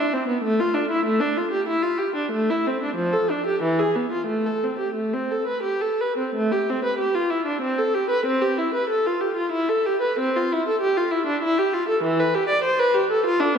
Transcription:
viola
Already playing: D4
0.13 C4
0.28 B3
0.44 A3
0.60 F4
0.74 D4
0.91 E4
1.05 A3
1.20 D4
1.37 F4
1.51 G4
1.68 E4
1.83 F4
1.98 G4
2.15 D4
2.32 A3
2.50 E4
2.67 C4
2.83 D4
2.95 F3
3.13 A4
3.30 D4
3.46 G4
3.62 E3
3.79 G#4
3.96 B3
4.12 F4
4.27 A3
4.46 A4
4.64 C4
4.79 G4
4.94 A3
5.13 C4
5.31 A4
5.47 B4
5.63 G4
5.81 A4
6.00 B4
6.18 C4
6.35 A3
6.52 G4
6.70 C4
6.84 B4
6.99 G4
7.14 F4
7.30 E4
7.46 D4
7.61 C4
7.78 A4
7.94 G4
8.10 B4
8.26 C4
8.41 G4
8.58 E4
8.74 B4
8.89 A4
9.06 F4
9.20 G4
9.37 F4
9.52 E4
9.69 A4
9.86 G4
10.01 B4
10.19 C4
10.35 F4
10.52 E4
10.68 A4
10.81 G4
10.97 F4
11.11 E4
11.26 D4
11.43 E4
11.58 G4
11.73 F4
11.88 A4
12.03 E3
12.20 B4
12.34 G4
12.49 D5
12.64 C5
12.79 B4
12.94 G4
13.10 A4
13.26 F4
13.40 D4

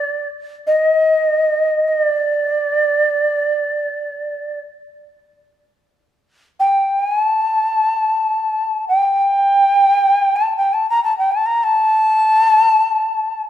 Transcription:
shakuhachi
Already playing: D5
0.66 D#5
1.88 D#5
2.01 D5
6.59 G5
6.99 G#5
7.25 A5
8.88 G5
10.35 A5
10.56 G5
10.73 A5
10.89 A#5
11.03 A5
11.18 G5
11.31 A5
11.45 A#5
11.63 A5

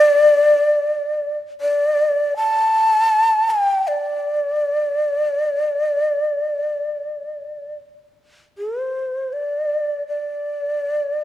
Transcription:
shakuhachi
Already playing: D5
1.61 D5
2.36 A5
3.50 G5
3.88 D5
8.58 A4
8.80 C5
9.33 D5
10.08 D5

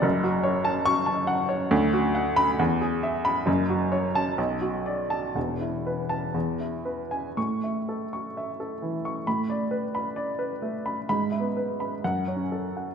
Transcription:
upright piano
0.02 F#1 F#2
0.23 F#4
0.43 C#5
0.65 A5
0.85 C#6
1.06 A5
1.27 F#5
1.49 C#5
1.71 D2
1.93 F#4
2.15 F#5
2.36 B5
2.59 E2
2.81 G#4
3.03 E5
3.25 B5
3.46 F#1 F#2
3.69 F#4
3.92 C#5
4.15 A5
4.38 B1
4.62 F#4
4.86 D5
5.10 A5
5.35 E1 E2
5.61 E4
5.86 B4
6.09 A5
6.34 E2
6.60 E4
6.85 B4
7.11 G#5
7.37 A2 C#6
7.64 E5
7.89 A4
8.13 C#6
8.37 E5
8.60 A4
8.82 E3
9.05 C#6
9.27 A2 B5
9.50 D5
9.71 B4
9.95 B5
10.16 D5
10.39 B4
10.62 A3
10.86 B5
11.09 G#2 B5
11.32 E5
11.40 B3
11.57 B4
11.80 B5
12.04 F#2 F#5
12.28 C#5
12.36 C#4
12.52 A4
12.77 F#5

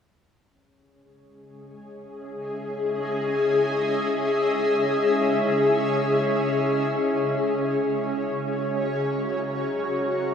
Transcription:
ambient pad
0.39 C#4
0.58 G#4
0.95 D#5
1.42 E5
7.87 F#4 C#5
8.09 A#5
9.42 G#5

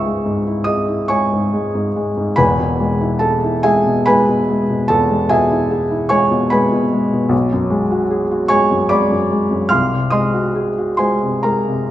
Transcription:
felt piano
Already playing: C#2 G#2 G#3 E4 G#4 B4 C#5 E5 G#5 B5 C#6 E6
0.06 G#3
0.26 G#2
0.47 E4
0.64 G#4 D#5 D#6
0.88 E4
1.08 G#3 C#5 G#5 C#6
1.32 G#2
1.53 G#3
1.75 G#2
1.96 G#3
2.17 G#2
2.36 E1 E2 B4 G#5 B5
2.60 B2
2.80 G#3
3.01 E4
3.19 G#4 A4 A5
3.44 E4
3.63 G#3 G#4 E5 G#5
3.86 B2
4.06 G#3 B4 G#5 B5
4.29 B2
4.49 G#3
4.70 B2
4.88 E2 A4 A5
5.11 G#3
5.29 B2 G#4 E5 G#5
5.51 E4
5.71 G#4
5.91 E4
6.09 G#3 C#5 G#5 C#6
6.31 B2
6.50 G#3 B4 G#5 B5
6.72 B2
6.93 G#3
7.13 B2
7.29 B1
7.52 F#2
7.70 G#3
7.91 F#4
8.10 G#4
8.31 F#4
8.48 G#3 C#5 G#5 C#6
8.71 F#2
8.89 G#3 D5 B5 D6
9.11 F#2
9.32 G#3
9.51 F#2
9.69 C2 F5 C6 F6
9.93 C3
10.10 G#3 D#5 C6 D#6
10.34 F#4
10.55 G#4
10.78 F#4
10.97 G#3 C5 G#5 C6
11.23 C3
11.43 G#3 A#4 A#5
11.68 C3

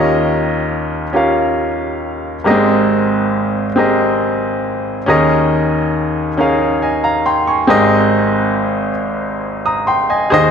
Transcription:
grand piano
Already playing: D#2 D#3 C#4 F4 G4 A#4 D#5
1.13 C#4 F4 G4 A#4 F5
2.44 G#1 G#2 A#3 G4 G#4 A#4 D#5
2.50 C4
3.76 C4 G4 G#4 A#4 D#5
5.06 D#2 D#3 C#4 D#4 G#4 A#4 D#5
6.37 C#4 D#4 G#4 A#4 F5
6.82 D#5 G#5
7.04 F5 A#5
7.26 G5 C6
7.47 G#5 C#6
7.67 G#1 G#2 C4 G4 G#4 A#4 D#5
9.66 A#5 D#6
9.87 G5 C6
10.10 D#5 G#5
10.30 D#2 D#3 G#4 C5 D#5

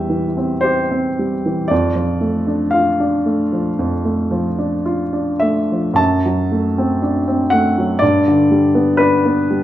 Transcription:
grand piano
Already playing: E2 E3 G3 C4 G4 E5 G5
0.09 E3
0.37 C4
0.61 G4 C5
0.91 C4
1.19 G3
1.46 E3
1.68 F2 D5
1.95 F3
2.21 A3
2.47 D4
2.71 F4 F5
3.00 D4
3.26 A3
3.52 F3
3.79 F2
4.05 A3
4.31 F3
4.58 D4
4.85 F4
5.13 D4
5.40 A3 E5
5.72 F3
5.94 F#2 A5
6.25 F#3
6.52 A3
6.78 C4
7.02 D4
7.28 C4
7.50 A3 F#5
7.78 F#3
7.99 G2 D5
8.28 D3
8.51 G3
8.75 B3
8.97 D4 B4
9.26 B3
9.51 G3

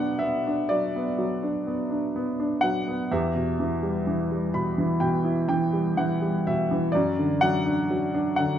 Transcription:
grand piano
Already playing: B2 F#3 B3 D4 F#4 D5 F#5
0.19 B3 E5
0.47 D4
0.69 F#3 F#4 D5
0.96 B3
1.18 F#3
1.43 D4
1.67 B3
1.91 D4
2.16 B3
2.40 D4
2.61 F#3 F#5
2.88 B3
3.12 E2 G4 E5
3.35 B2
3.60 E3
3.83 G3
4.07 E3
4.32 G3
4.54 B2 B5
4.78 E3
5.00 B2 G5
5.25 E4
5.49 E3 G5
5.73 G3
5.97 E3 F#5
6.22 G3
6.47 B2 E5
6.71 E3
6.92 F#2 F#4 D5
7.19 D3
7.41 F#3 F#5
7.67 D4
7.90 F#3
8.15 D4
8.36 D3 F#5

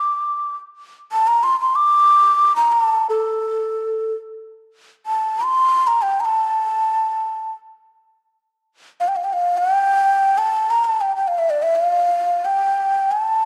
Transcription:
ney
Already playing: D6
1.12 A5
1.27 A#5
1.43 C6
1.60 C6
1.76 D6
2.56 A#5
2.72 A5
3.09 A4
5.06 A5
5.44 C6
5.87 A#5
6.02 G5
6.20 A#5
6.25 A5
9.00 F5
9.08 G5
9.16 F5
9.24 G5
9.33 F5
9.58 G5
10.38 A5
10.70 A#5
10.85 A5
11.01 G5
11.16 G5
11.28 F5
11.38 E5
11.50 D5
11.63 E5
11.76 F5
12.45 G5
13.12 A5

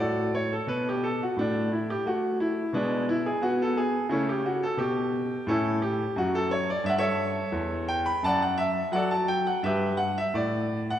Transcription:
grand piano
Already playing: A2
0.00 F#4 A4 D5
0.35 C#5
0.53 A4
0.67 B2 B4
0.89 G4
1.04 A4
1.23 F#4
1.36 A2 A3 D4
1.72 E4
1.90 G4
2.05 A3 F#4
2.40 E4
2.73 B2 G#3 B3 D4
3.09 E4
3.26 G#4
3.42 B3 F#4
3.62 A4
3.77 G#4
4.09 C#3 A3 C#4 E4
4.29 G4
4.46 F#4
4.63 A4
4.77 B2 G4
5.47 A2 C#4 E4 A4
5.82 G4
6.16 F#2 F#4
6.35 A4
6.51 C#5
6.70 D5
6.84 G2 E5
6.90 F#5
6.98 A4 C#5 E5
7.52 E2
7.88 G5
8.06 B5
8.23 F#2 D5 F#5 A5
8.42 F#5
8.58 E5
8.92 F#3 A4 D5 F#5
9.11 A5
9.28 G5
9.47 F#5
9.63 G2 G4 B4 E5
9.97 F#5
10.18 E5
10.34 A2 D5
10.90 F#5

